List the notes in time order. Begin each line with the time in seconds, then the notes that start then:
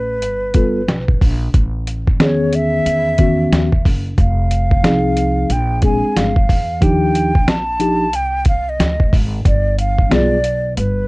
Already playing: A1 B4
0.22 G1, closed hi-hat
0.54 G3 B3 F4 A4, kick, closed hi-hat
0.88 B1, snare, closed hi-hat
1.09 kick
1.22 A#1, kick, open hi-hat
1.54 A1, kick, closed hi-hat
1.87 closed hi-hat
2.08 kick
2.20 E2 D#3 B3 C#4 G#4 C#5, snare, closed hi-hat
2.53 E5, closed hi-hat
2.86 E2, closed hi-hat
3.18 D#3 B3 C#4 F#4, kick, closed hi-hat
3.52 D#2, snare, closed hi-hat
3.72 kick
3.85 F#1, kick, open hi-hat
4.18 F1 F5, kick, closed hi-hat
4.51 closed hi-hat
4.71 kick
4.83 C2 F3 C4 D#4 G#4, snare, closed hi-hat
5.17 closed hi-hat
5.50 A#1 G5, closed hi-hat
5.82 G#3 C4 D4 G#4 G#5, kick, closed hi-hat
6.04 muted upright bass stroke
6.16 G1 F5, snare, closed hi-hat
6.36 kick
6.49 E2, kick, open hi-hat
6.81 D#2 F3 D4 D#4 G4 G5, kick, closed hi-hat
7.15 closed hi-hat
7.35 kick
7.48 A#1 A5, snare, closed hi-hat
7.79 F3 D4 D#4 G4, closed hi-hat
8.13 C2 G5, closed hi-hat
8.45 F5, kick, closed hi-hat
8.69 D#5
8.79 D2, snare, closed hi-hat
9.00 kick
9.13 G#1, kick, open hi-hat
9.45 G1 D5, kick, closed hi-hat
9.79 F5, closed hi-hat
9.99 kick
10.10 B1 G3 B3 F4 G#4 D5, snare, closed hi-hat
10.44 closed hi-hat
10.77 G1 B4, closed hi-hat